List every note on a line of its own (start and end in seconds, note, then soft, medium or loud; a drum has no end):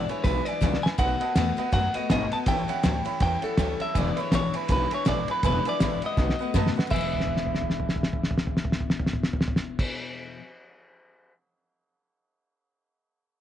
0.08 0.23 E3 soft
0.08 0.24 G#3 soft
0.08 0.25 D4 medium
0.08 0.25 E4 medium
0.08 0.19 B4 medium
0.08 0.25 C#5 medium
0.08 0.19 E5 medium
0.08 0.20 G#5 medium
0.08 muted upright bass stroke medium
0.08 ride medium
0.24 0.42 B1 loud
0.24 0.47 E3 medium
0.24 0.47 G#3 medium
0.24 0.46 D4 medium
0.24 0.44 E4 medium
0.24 0.45 B4 loud
0.24 0.38 B4 medium
0.24 0.39 E5 medium
0.24 0.39 B5 medium
0.24 kick loud
0.24 snare soft
0.24 ride medium
0.45 0.61 E3 soft
0.45 0.61 G#3 soft
0.45 0.62 D4 soft
0.45 0.62 E4 medium
0.45 0.57 B4 medium
0.45 0.84 D5 medium
0.45 0.57 E5 medium
0.45 0.57 G#5 medium
0.45 muted upright bass stroke medium
0.45 ride medium
0.61 0.79 C#2 loud
0.61 0.83 E2 medium
0.61 0.84 B2 medium
0.61 0.84 E3 medium
0.61 0.83 G#3 loud
0.61 0.82 D4 loud
0.61 0.81 E4 loud
0.61 0.76 B4 medium
0.61 0.76 E5 medium
0.61 0.76 G#5 loud
0.61 kick medium
0.61 snare medium
0.74 snare medium
0.82 0.98 E3 soft
0.82 0.99 G#3 soft
0.82 0.99 D4 medium
0.82 0.98 E4 medium
0.82 0.93 B4 medium
0.82 0.93 E5 medium
0.82 0.88 G#5 loud
0.82 0.94 G#5 medium
0.82 muted upright bass stroke medium
0.82 snare loud
0.98 1.16 B1 medium
0.98 1.21 B2 medium
0.98 1.21 D#3 medium
0.98 1.21 A3 medium
0.98 1.20 B3 medium
0.98 1.19 F#4 medium
0.98 1.12 B4 medium
0.98 1.12 D#5 medium
0.98 1.12 F#5 loud
0.98 1.72 F#5 loud
0.98 kick loud
0.98 ride medium
1.20 1.36 A3 medium
1.20 1.36 B3 medium
1.20 1.36 F#4 medium
1.20 1.30 B4 medium
1.20 1.30 D#5 medium
1.20 1.30 A5 loud
1.20 ride medium
1.35 1.53 E2 medium
1.35 1.58 B2 medium
1.35 1.58 D#3 loud
1.35 1.58 A3 medium
1.35 1.57 B3 medium
1.35 1.55 F#4 medium
1.35 1.50 B4 medium
1.35 1.50 D#5 medium
1.35 1.50 G#5 medium
1.35 snare loud
1.35 ride medium
1.57 1.71 A3 medium
1.57 1.73 B3 medium
1.57 1.73 F#4 medium
1.57 1.67 B4 medium
1.57 1.68 D#5 medium
1.57 1.68 F#5 medium
1.57 muted upright bass stroke medium
1.57 ride medium
1.72 1.90 F#2 loud
1.72 1.95 D#3 medium
1.72 1.95 A3 medium
1.72 1.94 B3 medium
1.72 1.93 F#4 medium
1.72 1.87 D#5 medium
1.72 1.96 F#5 loud
1.72 1.87 G#5 medium
1.72 kick loud
1.72 snare soft
1.72 ride medium
1.94 2.10 A3 soft
1.94 2.10 B3 medium
1.94 2.10 F#4 medium
1.94 2.04 B4 medium
1.94 2.09 D#5 medium
1.94 2.04 D#5 medium
1.94 2.05 F#5 medium
1.94 muted upright bass stroke medium
1.94 ride medium
2.09 2.27 G#1 loud
2.09 2.32 B2 medium
2.09 2.32 D#3 medium
2.09 2.33 A3 medium
2.09 2.32 B3 loud
2.09 2.30 F#4 medium
2.09 2.23 B4 medium
2.09 2.23 D#5 medium
2.09 2.34 D#5 loud
2.09 2.24 G#5 loud
2.09 snare loud
2.09 ride medium
2.31 2.47 A3 soft
2.31 2.48 B3 soft
2.31 2.47 F#4 medium
2.31 2.41 B4 medium
2.31 2.41 D#5 medium
2.31 2.42 F#5 medium
2.31 2.38 A5 loud
2.31 muted upright bass stroke medium
2.31 ride medium
2.46 2.64 A1 loud
2.46 2.69 A2 medium
2.46 2.69 E3 medium
2.46 2.69 G3 medium
2.46 2.68 C#4 medium
2.46 2.67 E4 medium
2.46 2.60 C#5 loud
2.46 2.60 E5 loud
2.46 3.21 G5 loud
2.46 2.61 A5 loud
2.46 kick loud
2.46 ride medium
2.68 2.83 G3 medium
2.68 2.84 C#4 medium
2.68 2.84 E4 medium
2.68 2.78 C#5 medium
2.68 2.78 E5 medium
2.68 2.78 F#5 loud
2.68 muted upright bass stroke medium
2.68 ride medium
2.83 3.01 D2 loud
2.83 3.06 A2 medium
2.83 3.06 E3 medium
2.83 3.06 G3 medium
2.83 3.06 C#4 medium
2.83 3.04 E4 loud
2.83 2.97 C#5 medium
2.83 2.97 E5 medium
2.83 2.97 A5 medium
2.83 snare loud
2.83 ride medium
3.05 3.21 G3 medium
3.05 3.21 C#4 medium
3.05 3.21 E4 medium
3.05 3.15 C#5 medium
3.05 3.15 E5 medium
3.05 3.15 B5 loud
3.05 muted upright bass stroke medium
3.05 ride medium
3.20 3.38 E2 loud
3.20 3.43 E3 medium
3.20 3.44 G3 medium
3.20 3.43 C#4 medium
3.20 3.41 E4 medium
3.20 3.34 C#5 medium
3.20 3.34 E5 medium
3.20 3.45 G5 loud
3.20 3.34 A5 medium
3.20 kick loud
3.20 snare soft
3.20 ride medium
3.42 3.58 G3 soft
3.42 3.58 C#4 soft
3.42 3.58 E4 medium
3.42 3.82 A4 loud
3.42 3.52 C#5 medium
3.42 3.52 E5 medium
3.42 3.52 F#5 medium
3.42 muted upright bass stroke medium
3.42 ride medium
3.57 3.75 D2 loud
3.57 3.80 A2 medium
3.57 3.81 E3 medium
3.57 3.81 G3 medium
3.57 3.80 C#4 medium
3.57 3.79 E4 medium
3.57 3.71 C#5 medium
3.57 3.71 E5 medium
3.57 3.71 G5 loud
3.57 kick medium
3.57 snare loud
3.57 ride loud
3.79 3.96 G3 soft
3.79 3.96 C#4 medium
3.79 3.95 E4 medium
3.79 3.89 C#5 medium
3.79 3.89 E5 medium
3.79 3.98 E5 loud
3.79 3.89 A5 medium
3.79 muted upright bass stroke medium
3.79 ride medium
3.94 4.12 E1 medium
3.94 4.17 E2 medium
3.94 4.17 B2 medium
3.94 4.18 E3 medium
3.94 4.18 G#3 medium
3.94 4.17 D4 medium
3.94 4.16 E4 loud
3.94 4.08 B4 medium
3.94 4.08 E5 medium
3.94 4.08 G#5 loud
3.94 kick loud
3.94 ride medium
3.98 4.20 D5 loud
4.16 4.32 G#3 medium
4.16 4.33 D4 medium
4.16 4.32 E4 medium
4.16 4.26 B4 loud
4.16 4.34 C#5 medium
4.16 4.26 E5 medium
4.16 4.26 B5 loud
4.16 muted upright bass stroke medium
4.16 ride medium
4.20 4.32 E3 medium
4.31 4.49 A1 loud
4.31 4.54 E2 medium
4.31 4.55 B2 medium
4.31 4.55 E3 medium
4.31 4.55 G#3 medium
4.31 4.54 D4 loud
4.31 4.52 E4 medium
4.31 4.45 B4 medium
4.31 4.56 C#5 loud
4.31 4.45 E5 medium
4.31 4.46 G#5 medium
4.31 snare loud
4.31 ride medium
4.53 4.67 E3 soft
4.53 4.68 G#3 medium
4.53 4.69 D4 medium
4.53 4.69 E4 medium
4.53 4.63 B4 medium
4.53 4.71 B4 medium
4.53 4.63 E5 medium
4.53 4.64 G#5 medium
4.53 muted upright bass stroke medium
4.53 ride medium
4.68 4.87 B1 loud
4.68 4.91 E3 medium
4.68 4.91 G#3 medium
4.68 4.91 D4 medium
4.68 4.89 E4 medium
4.68 4.83 B4 medium
4.68 4.93 B4 loud
4.68 4.83 E5 medium
4.68 4.83 G#5 medium
4.68 kick loud
4.68 ride loud
4.91 5.05 E3 soft
4.91 5.05 G#3 medium
4.91 5.06 D4 medium
4.91 5.06 E4 medium
4.91 5.01 B4 medium
4.91 5.07 C#5 medium
4.91 5.01 E5 medium
4.91 5.01 G#5 medium
4.91 ride medium
5.05 5.24 A1 loud
5.05 5.28 E2 medium
5.05 5.28 B2 medium
5.05 5.28 E3 medium
5.05 5.28 G#3 medium
5.05 5.28 D4 medium
5.05 5.27 E4 medium
5.05 5.20 B4 loud
5.05 5.30 D5 medium
5.05 5.20 E5 medium
5.05 5.20 G#5 loud
5.05 snare loud
5.05 ride medium
5.28 5.43 E3 soft
5.28 5.44 G#3 soft
5.28 5.44 D4 soft
5.28 5.43 E4 medium
5.28 5.38 B4 medium
5.28 5.45 B4 medium
5.28 5.38 E5 medium
5.28 5.38 G#5 medium
5.28 muted upright bass stroke medium
5.28 ride medium
5.43 5.61 E1 medium
5.43 5.65 E2 medium
5.43 5.66 B2 medium
5.43 5.66 E3 medium
5.43 5.66 G#3 medium
5.43 5.65 D4 loud
5.43 5.64 E4 medium
5.43 5.57 B4 loud
5.43 5.67 B4 medium
5.43 5.57 E5 medium
5.43 5.57 G#5 loud
5.43 kick loud
5.43 ride medium
5.65 5.80 E3 medium
5.65 5.80 G#3 soft
5.65 5.81 D4 medium
5.65 5.81 E4 medium
5.65 5.75 B4 medium
5.65 5.75 E5 medium
5.65 5.75 G#5 loud
5.65 muted upright bass stroke medium
5.65 ride medium
5.69 6.02 D5 medium
5.80 5.97 A1 medium
5.80 6.02 E2 medium
5.80 6.02 B2 medium
5.80 6.03 E3 medium
5.80 6.03 G#3 medium
5.80 6.02 D4 medium
5.80 6.01 E4 loud
5.80 5.94 B4 medium
5.80 5.94 E5 medium
5.80 5.95 B5 medium
5.80 snare loud
5.80 ride medium
6.02 6.17 E3 soft
6.02 6.18 G#3 soft
6.02 6.18 D4 medium
6.02 6.17 E4 medium
6.02 6.12 B4 medium
6.02 6.12 E5 medium
6.02 6.12 F#5 medium
6.02 muted upright bass stroke medium
6.02 ride medium
6.06 6.74 D#5 medium
6.17 6.34 B1 loud
6.17 6.39 D#3 medium
6.17 6.40 A3 medium
6.17 6.39 B3 medium
6.17 6.38 F#4 medium
6.17 6.31 B4 medium
6.17 6.31 D#5 medium
6.17 6.31 F#5 medium
6.17 kick loud
6.17 snare medium
6.29 snare medium
6.39 6.54 A3 soft
6.39 6.55 B3 medium
6.39 6.54 F#4 medium
6.39 6.49 B4 medium
6.39 6.49 D#5 medium
6.39 6.49 F#5 medium
6.54 6.71 F#2 medium
6.54 6.76 B2 loud
6.54 6.76 D#3 medium
6.54 6.77 A3 loud
6.54 6.76 B3 loud
6.54 6.74 F#4 loud
6.54 6.68 B4 loud
6.54 6.68 D#5 loud
6.54 6.68 A5 loud
6.54 kick medium
6.54 snare medium
6.67 snare medium
6.76 6.93 A3 medium
6.76 6.92 B3 medium
6.76 6.91 F#4 medium
6.76 6.86 B4 medium
6.76 6.86 D#5 medium
6.76 6.86 F#5 medium
6.76 snare loud
6.87 9.82 E1 medium
6.87 10.37 E2 medium
6.87 10.40 B2 medium
6.87 9.81 B4 medium
6.87 9.82 E5 medium
6.91 10.41 E3 loud
6.91 9.82 E5 medium
6.91 9.83 G#5 medium
6.91 kick loud
6.91 crash medium
6.96 10.41 G#3 medium
6.96 10.41 D4 medium
7.01 10.41 E4 medium
7.13 floor tom medium
7.20 snare medium
7.27 floor tom medium
7.37 snare medium
7.46 floor tom medium
7.54 snare medium
7.62 floor tom medium
7.70 snare medium
7.80 floor tom medium
7.89 snare medium
7.96 floor tom medium
8.03 snare medium
8.13 floor tom medium
8.23 snare medium
8.31 floor tom medium
8.38 snare medium
8.47 floor tom medium
8.57 snare medium
8.65 floor tom medium
8.72 snare medium
8.80 floor tom medium
8.90 snare medium
8.99 floor tom medium
9.06 snare medium
9.13 floor tom medium
9.23 snare medium
9.33 floor tom medium
9.41 snare medium
9.48 floor tom medium
9.56 snare loud
9.79 kick loud
9.79 crash loud